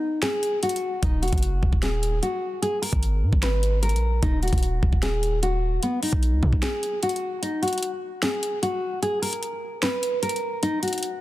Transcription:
Already playing: D#4
0.22 G#4, snare, closed hi-hat
0.43 closed hi-hat
0.63 F#4, closed hi-hat
0.69 closed hi-hat
0.76 closed hi-hat
1.02 D#1 D#4, kick, closed hi-hat
1.22 E1 F#4, closed hi-hat
1.28 closed hi-hat
1.33 F#1, kick, closed hi-hat
1.38 closed hi-hat
1.43 closed hi-hat
1.63 D#1, kick
1.73 D#1, kick
1.83 G#4, snare, closed hi-hat
2.03 closed hi-hat
2.23 F#4, closed hi-hat
2.62 G#4, closed hi-hat
2.82 A#4, closed hi-hat, open hi-hat
2.93 G#1, kick, closed hi-hat
3.03 closed hi-hat
3.23 G#2
3.33 G#1, kick
3.43 B4, snare, closed hi-hat
3.63 closed hi-hat
3.83 A#4, closed hi-hat
3.89 A#1, closed hi-hat
3.96 closed hi-hat
4.23 D#1 D#4, kick, closed hi-hat
4.43 F#4, closed hi-hat
4.48 closed hi-hat
4.53 D#1, kick, closed hi-hat
4.58 closed hi-hat
4.63 closed hi-hat
4.83 D#1, kick
4.93 D#1, kick
5.03 G#4, snare, closed hi-hat
5.23 closed hi-hat
5.43 F#4, closed hi-hat
5.83 B3, closed hi-hat
6.03 D#4, closed hi-hat, open hi-hat
6.13 B1, kick, closed hi-hat
6.23 closed hi-hat
6.33 C#2
6.43 B2, kick
6.53 B1, kick
6.62 G#4, snare, closed hi-hat
6.83 closed hi-hat
7.03 F#4, closed hi-hat
7.09 closed hi-hat
7.16 closed hi-hat
7.42 D#4, closed hi-hat
7.62 F#4, closed hi-hat
7.68 closed hi-hat
7.73 closed hi-hat
7.78 closed hi-hat
7.83 closed hi-hat
8.23 G#4, snare, closed hi-hat
8.43 closed hi-hat
8.63 F#4, closed hi-hat
9.02 G#4, closed hi-hat
9.22 A#4, closed hi-hat, open hi-hat
9.33 closed hi-hat
9.43 closed hi-hat
9.83 B4, snare, closed hi-hat
10.03 closed hi-hat
10.23 A#4, closed hi-hat
10.29 closed hi-hat
10.36 closed hi-hat
10.63 D#4, closed hi-hat
10.83 F#4, closed hi-hat
10.88 closed hi-hat
10.93 closed hi-hat
10.98 closed hi-hat
11.03 closed hi-hat

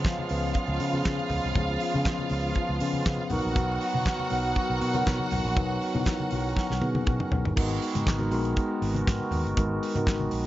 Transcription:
Already playing: C#3 F3 G#3 B3 C#4 F4 G#4 F5
0.04 kick, snare, clap, closed hi-hat
0.19 high conga
0.29 C#2 F3 B3 C#4 B4, open hi-hat
0.54 kick, closed hi-hat, muted conga
0.68 C#2
0.80 C#3, open hi-hat
0.93 F3 B3 C#4 G#4, high conga
1.05 C#3, kick, snare, clap, closed hi-hat
1.18 high conga
1.29 C#2, open hi-hat, muted conga, low conga
1.44 C2
1.55 C#2 F3 B3 C#4 G#4, kick, closed hi-hat, low conga
1.80 open hi-hat, muted conga
1.94 C#3 F3 B3 C#4 G#4, high conga
2.05 kick, snare, clap, closed hi-hat, muted conga, high conga
2.19 high conga
2.29 C#2, open hi-hat, muted conga
2.55 kick, closed hi-hat, muted conga
2.69 C#2
2.80 C#3 F3 B3 C#4 G#4, open hi-hat
2.93 high conga
3.06 C#3, kick, snare, clap, closed hi-hat
3.18 high conga
3.30 B1 D#3 F#3 B3 D#4 F#4 A#4 F#5, open hi-hat, muted conga, low conga
3.45 A#1
3.55 B1, kick, closed hi-hat, muted conga, low conga
3.80 open hi-hat, muted conga
3.94 B2, high conga
4.05 kick, snare, clap, closed hi-hat, muted conga, high conga
4.20 high conga
4.30 B1 F#3 B3 D#4 A#4, open hi-hat
4.55 kick, closed hi-hat
4.70 B1
4.81 B2, open hi-hat, muted conga
4.94 F#3 B3 D#4 A#4, high conga
5.07 B2, kick, snare, clap, closed hi-hat
5.20 high conga
5.31 B1 C#4, open hi-hat, low conga
5.45 A#1
5.55 B1 F#3 B3 D#4 B4, kick, closed hi-hat, muted conga, low conga
5.82 open hi-hat, muted conga
5.94 B2 F#3 B3 D#4 E4, high conga
6.02 F#4, closed hi-hat
6.06 kick, snare, clap
6.20 high conga
6.31 B1, open hi-hat
6.57 kick, snare
6.70 B1, snare
6.81 B2 F#3 B3 D#4 G#4 B4, high tom
6.95 high tom, high conga
7.06 B2 F#5, kick, mid tom, muted conga
7.19 mid tom, high conga
7.32 B1, floor tom, muted conga, low conga
7.45 G1, floor tom
7.56 G#1 D#3 G#3 B3 D#4 F#4 A#4, kick, crash, muted conga, low conga
7.82 open hi-hat
7.95 G#2, closed hi-hat, high conga
8.06 G#1, kick, snare, clap, closed hi-hat, muted conga, high conga
8.19 G#3 B3 D#4 F#4 A#4, high conga
8.31 A#1 G#3 B3 D#4 F#4 A#4, open hi-hat, muted conga
8.45 closed hi-hat
8.56 kick, closed hi-hat, muted conga
8.82 G#1, open hi-hat
8.94 closed hi-hat, high conga
9.07 G#2, kick, snare, clap, closed hi-hat
9.20 high conga
9.31 D#2, open hi-hat, low conga
9.45 G1, closed hi-hat
9.56 G#1 G#3 B3 D#4 F#4 A#4, kick, closed hi-hat, low conga
9.83 open hi-hat
9.95 G#2 G#3 B3 D#4 F#4 A#4, closed hi-hat, high conga
10.07 G#1, kick, snare, clap, closed hi-hat
10.20 high conga
10.31 A#1, open hi-hat, muted conga

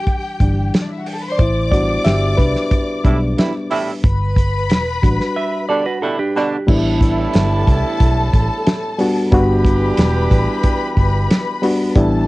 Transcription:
Already playing: E3 G3 D4 G4 G5
0.07 kick, closed hi-hat
0.40 G1 E3 G3 D4, kick, closed hi-hat
0.74 snare, closed hi-hat
0.82 D4 D5
0.90 E4 E5
0.99 F#4 F#5
1.06 G4 G5, open hi-hat
1.14 A4 A5
1.22 B4 B5
1.29 C5 D5 C6
1.38 A1 E4 C5 D5 D6, kick, closed hi-hat
1.72 G3 B3 D4 F#4 D5, kick, closed hi-hat
2.05 G1 G4 E5, snare, closed hi-hat
2.38 C2 D4 B4, kick, closed hi-hat
2.56 snare
2.71 kick, closed hi-hat
3.04 B1 A2 E3 G3 B3 D4 E4, kick, closed hi-hat
3.37 A2 E3 G3 E4, snare, closed hi-hat
3.70 A2 E3 G3 E4, open hi-hat
4.03 G1 B4 B5, kick, closed hi-hat
4.36 kick, closed hi-hat
4.69 E1, snare, closed hi-hat
5.02 A1 G3 D4 F#4, kick, closed hi-hat
5.20 snare
5.36 B4 E5
5.69 B2 D3 G3 D4 A4 D5
5.86 F#4 B4
6.02 B2 D3 G3 D4 E4 A4
6.19 D4 G4
6.35 B2 D3 G3 D4
6.67 A1 A2 E3 G3 B3 D4 E4 A4 A5, kick, crash
7.01 kick, closed hi-hat
7.33 G1, snare, closed hi-hat
7.67 C2, kick, closed hi-hat
8.00 B1, kick, closed hi-hat
8.34 A1, kick, closed hi-hat
8.67 snare, closed hi-hat
8.98 G3 B3 D4 F#4, open hi-hat
9.32 G1 E3 G3 B3 D4 F#4 G4 B4 B5, kick, closed hi-hat
9.65 kick, closed hi-hat
9.97 E1, snare, closed hi-hat
10.31 A1, kick, closed hi-hat
10.63 kick, closed hi-hat
10.97 G1, kick, closed hi-hat
11.31 snare, closed hi-hat
11.62 G3 B3 D4 F#4, open hi-hat
11.95 A1 E3 G3 A3 B3 D4 E4 A4 A5, kick, closed hi-hat

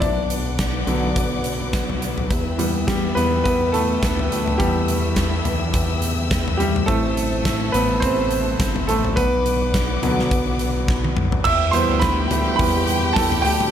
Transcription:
0.00 B1 D4 B4 D5 F#5 D6, kick, closed hi-hat
0.30 closed hi-hat
0.59 kick, snare, closed hi-hat
0.87 B1 D3 F#3 B3, closed hi-hat
1.16 B1, kick, closed hi-hat
1.44 closed hi-hat
1.73 kick, snare, closed hi-hat
1.90 floor tom
2.02 closed hi-hat
2.18 floor tom
2.30 E2 E5 G5 E6, kick, closed hi-hat
2.58 E3 G3 B3, closed hi-hat
2.87 G3 G4, kick, snare, closed hi-hat
3.15 E2 B3 B4, closed hi-hat
3.44 E2 B3 B4, kick, closed hi-hat
3.72 A3 A4, closed hi-hat
4.03 D2, kick, snare, closed hi-hat
4.19 floor tom
4.31 D2, closed hi-hat
4.48 floor tom
4.58 E2 E3 G3 B3 G4, kick, closed hi-hat
4.88 closed hi-hat
5.16 kick, snare, closed hi-hat
5.45 E2, closed hi-hat, floor tom
5.74 E2, kick, closed hi-hat
6.02 closed hi-hat
6.31 kick, snare, closed hi-hat
6.48 floor tom
6.57 G3 G4, closed hi-hat
6.76 floor tom
6.86 A1 E3 A3 C4 A4 C5 A5, kick, closed hi-hat
7.17 closed hi-hat
7.45 kick, snare, closed hi-hat
7.72 A1 B3 B4, closed hi-hat
8.00 A1 C4 C5, kick, closed hi-hat
8.31 closed hi-hat
8.59 G1, kick, snare, closed hi-hat
8.76 floor tom
8.87 A1 A3 A4, closed hi-hat
9.05 floor tom
9.16 B1 B3 B4 D5 F#5 D6, kick, closed hi-hat
9.46 closed hi-hat
9.74 kick, snare, closed hi-hat
10.02 B1 D3 F#3 B3, closed hi-hat, floor tom
10.19 snare
10.31 B1, kick, closed hi-hat
10.59 closed hi-hat
10.88 kick, snare
11.04 high tom
11.17 mid tom
11.32 floor tom
11.44 E2 G4 E5 G5 E6, kick, crash
11.71 E3 G3 B3 C5 C6, hi-hat pedal, open hi-hat
11.89 D2
12.00 B4 B5, kick, snare, hi-hat pedal, open hi-hat
12.31 D2, floor tom, hi-hat pedal, open hi-hat
12.56 E2 E3 G3 B3 B4 B5, kick, hi-hat pedal, open hi-hat
12.87 hi-hat pedal, open hi-hat
13.13 E2 A5, kick, snare, hi-hat pedal, open hi-hat
13.17 A4
13.32 floor tom
13.42 D2 G5, hi-hat pedal, open hi-hat
13.46 G4
13.60 floor tom

